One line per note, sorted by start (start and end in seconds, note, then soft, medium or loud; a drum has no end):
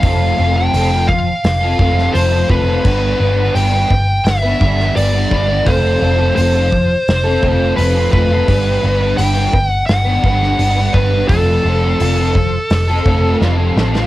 0.00 0.31 F1 loud
0.00 0.72 F3 medium
0.00 0.36 A3 medium
0.00 0.37 C4 loud
0.00 0.58 F5 loud
0.00 kick loud
0.00 open hi-hat medium
0.04 0.38 F4 medium
0.04 0.39 A4 medium
0.37 0.67 F1 medium
0.37 0.73 A3 medium
0.37 0.56 C4 medium
0.37 0.55 F4 medium
0.37 0.53 A4 medium
0.55 0.73 C4 medium
0.55 0.74 F4 medium
0.55 0.74 A4 medium
0.55 1.10 G5 loud
0.73 1.30 F1 medium
0.73 1.26 F3 medium
0.73 1.08 A3 medium
0.73 0.93 C4 medium
0.73 0.91 F4 loud
0.73 0.89 A4 loud
0.73 open hi-hat medium
0.90 1.08 C4 medium
0.90 1.08 F4 medium
0.90 1.08 A4 medium
1.08 2.17 F5 loud
1.08 muted overdriven electric guitar stroke soft
1.08 kick medium
1.44 1.72 F1 loud
1.44 snare loud
1.44 open hi-hat medium
1.61 1.78 C4 medium
1.61 1.79 F4 medium
1.61 1.80 A4 medium
1.78 2.07 F1 medium
1.78 2.13 A3 medium
1.78 2.13 C4 medium
1.78 2.14 F4 medium
1.78 2.14 A4 medium
1.78 kick medium
1.98 snare soft
2.13 2.43 F1 medium
2.13 2.66 F3 medium
2.13 2.47 A3 medium
2.13 2.33 C4 loud
2.13 2.31 F4 loud
2.13 2.30 A4 loud
2.13 2.50 C5 medium
2.13 open hi-hat medium
2.31 2.48 C4 medium
2.31 2.49 F4 medium
2.31 2.50 A4 medium
2.48 2.78 F1 medium
2.48 2.82 A3 medium
2.48 2.68 C4 medium
2.48 2.66 F4 medium
2.48 2.65 A4 medium
2.48 3.58 B4 loud
2.48 kick medium
2.66 2.83 C4 medium
2.66 2.83 F4 medium
2.66 2.82 A4 medium
2.84 3.13 G1 medium
2.84 3.18 G3 medium
2.84 3.20 B3 loud
2.84 3.19 D4 medium
2.84 3.20 B4 loud
2.84 kick loud
2.84 crash loud
3.19 3.48 G1 medium
3.19 3.53 G3 medium
3.19 3.38 B3 medium
3.19 3.39 D4 medium
3.19 3.36 B4 medium
3.37 3.55 B3 medium
3.37 3.54 D4 medium
3.37 3.56 B4 medium
3.54 3.83 G1 medium
3.54 3.89 G3 medium
3.54 3.72 B3 loud
3.54 3.74 D4 medium
3.54 3.71 B4 loud
3.54 4.27 G5 loud
3.54 open hi-hat medium
3.72 3.90 B3 medium
3.72 3.89 D4 medium
3.72 3.90 B4 medium
3.90 4.19 G1 medium
3.90 muted overdriven electric guitar stroke soft
3.90 kick medium
4.24 4.53 G1 loud
4.24 4.96 E5 medium
4.24 snare loud
4.24 open hi-hat medium
4.43 4.60 B3 medium
4.43 4.59 D4 medium
4.43 4.61 B4 medium
4.59 4.89 G1 medium
4.59 4.94 G3 medium
4.59 4.95 B3 medium
4.59 4.95 D4 medium
4.59 4.96 B4 medium
4.59 kick medium
4.80 snare soft
4.95 5.24 G1 medium
4.95 5.29 G3 loud
4.95 5.12 B3 medium
4.95 5.14 D4 loud
4.95 5.11 B4 loud
4.95 5.68 D5 loud
4.95 open hi-hat medium
5.12 5.31 B3 medium
5.12 5.30 D4 medium
5.12 5.32 B4 medium
5.30 5.60 G1 medium
5.30 5.64 G3 medium
5.30 5.47 B3 medium
5.30 5.48 D4 medium
5.30 5.45 B4 loud
5.30 kick medium
5.46 5.64 B3 medium
5.46 5.64 D4 medium
5.46 5.63 B4 medium
5.64 5.95 F1 loud
5.64 6.34 F3 medium
5.64 5.98 A3 medium
5.64 6.00 C4 medium
5.64 6.00 F4 loud
5.64 6.01 A4 loud
5.64 6.34 C5 loud
5.64 kick loud
5.64 open hi-hat medium
6.00 6.30 F1 loud
6.00 6.35 A3 medium
6.00 6.20 C4 medium
6.00 6.19 F4 medium
6.00 6.17 A4 medium
6.18 6.36 C4 medium
6.18 6.36 F4 medium
6.18 6.37 A4 medium
6.35 6.94 F1 medium
6.35 6.89 F3 medium
6.35 6.70 A3 medium
6.35 6.55 C4 medium
6.35 6.54 F4 medium
6.35 6.52 A4 loud
6.35 7.76 C5 loud
6.35 open hi-hat medium
6.54 6.70 C4 medium
6.54 6.70 F4 medium
6.54 6.70 A4 medium
6.71 muted overdriven electric guitar stroke soft
6.71 kick medium
7.08 7.36 F1 loud
7.08 snare loud
7.08 open hi-hat medium
7.24 7.41 C4 medium
7.24 7.42 F4 medium
7.24 7.43 A4 medium
7.41 7.71 F1 medium
7.41 7.76 A3 medium
7.41 7.76 C4 medium
7.41 7.77 F4 medium
7.41 7.77 A4 medium
7.41 kick medium
7.76 8.06 F1 medium
7.76 8.29 F3 medium
7.76 8.11 A3 medium
7.76 7.95 C4 loud
7.76 7.94 F4 loud
7.76 7.93 A4 loud
7.76 8.10 B4 medium
7.76 open hi-hat medium
7.94 8.12 C4 medium
7.94 8.13 F4 medium
7.94 8.14 A4 medium
8.11 8.41 F1 medium
8.11 8.45 A3 medium
8.11 8.30 C4 medium
8.11 8.29 F4 medium
8.11 8.27 A4 loud
8.11 9.21 B4 medium
8.11 kick medium
8.29 8.46 C4 medium
8.29 8.46 F4 medium
8.29 8.45 A4 medium
8.47 8.76 G1 medium
8.47 8.80 G3 medium
8.47 8.83 B3 medium
8.47 8.82 D4 loud
8.47 8.84 B4 loud
8.47 kick loud
8.47 open hi-hat medium
8.82 9.12 G1 loud
8.82 9.16 G3 medium
8.82 9.00 B3 medium
8.82 9.01 D4 medium
8.82 8.98 B4 loud
8.99 9.18 B3 medium
8.99 9.17 D4 medium
8.99 9.19 B4 medium
9.17 9.47 G1 loud
9.17 9.51 G3 loud
9.17 9.35 B3 loud
9.17 9.36 D4 medium
9.17 9.34 B4 loud
9.17 9.68 G5 loud
9.17 open hi-hat medium
9.35 9.52 B3 medium
9.35 9.52 D4 medium
9.35 9.52 B4 medium
9.52 9.82 G1 medium
9.52 muted overdriven electric guitar stroke soft
9.52 kick medium
9.68 9.86 F#5 loud
9.86 10.17 G1 loud
9.86 10.96 F#5 loud
9.86 snare loud
9.86 open hi-hat medium
10.05 10.23 B3 medium
10.05 10.22 D4 medium
10.05 10.24 B4 medium
10.22 10.52 G1 medium
10.22 10.57 G3 medium
10.22 10.59 B3 medium
10.22 10.58 D4 medium
10.22 10.60 B4 medium
10.22 kick medium
10.42 snare soft
10.58 10.87 G1 medium
10.58 10.92 G3 medium
10.58 10.76 B3 loud
10.58 10.77 D4 loud
10.58 10.74 B4 loud
10.58 open hi-hat medium
10.75 10.94 B3 medium
10.75 10.93 D4 medium
10.75 10.95 B4 medium
10.93 11.23 G1 medium
10.93 11.27 G3 medium
10.93 11.11 B3 medium
10.93 11.13 D4 medium
10.93 11.28 B4 medium
10.93 11.10 B4 medium
10.93 kick medium
11.11 11.28 B3 medium
11.11 11.29 D4 medium
11.11 11.27 B4 medium
11.28 11.58 F1 loud
11.28 11.98 F3 loud
11.28 11.63 A3 medium
11.28 11.64 C4 medium
11.28 11.65 F4 loud
11.28 13.36 A4 medium
11.28 11.66 A4 medium
11.28 kick loud
11.28 open hi-hat medium
11.64 11.93 F1 loud
11.64 11.99 A3 medium
11.64 11.83 C4 medium
11.64 11.82 F4 medium
11.64 11.81 A4 medium
11.82 12.00 C4 medium
11.82 12.00 F4 medium
11.82 12.01 A4 medium
11.99 12.57 F1 loud
11.99 12.53 F3 medium
11.99 12.34 A3 medium
11.99 12.18 C4 loud
11.99 12.17 F4 loud
11.99 12.15 A4 loud
11.99 open hi-hat medium
12.16 12.34 C4 medium
12.16 12.35 F4 medium
12.16 12.35 A4 medium
12.35 muted overdriven electric guitar stroke soft
12.35 kick medium
12.70 12.99 F1 medium
12.70 snare loud
12.70 open hi-hat medium
12.87 13.05 C4 medium
12.87 13.06 F4 medium
12.87 13.07 A4 medium
13.06 13.34 F1 medium
13.06 13.40 A3 medium
13.06 13.40 C4 medium
13.06 13.41 F4 medium
13.06 13.42 A4 loud
13.06 kick medium
13.40 13.69 F1 medium
13.40 13.93 F3 medium
13.40 13.74 A3 medium
13.40 13.59 C4 loud
13.40 13.57 F4 loud
13.40 13.56 A4 loud
13.40 snare medium
13.57 13.76 C4 medium
13.57 13.77 F4 medium
13.57 13.78 A4 medium
13.76 14.05 A1 medium
13.76 14.07 A3 medium
13.76 13.94 C4 medium
13.76 13.93 F4 medium
13.76 13.91 A4 medium
13.76 snare loud
13.93 14.07 C4 medium
13.93 14.07 F4 medium
13.93 14.07 A4 medium
13.93 snare medium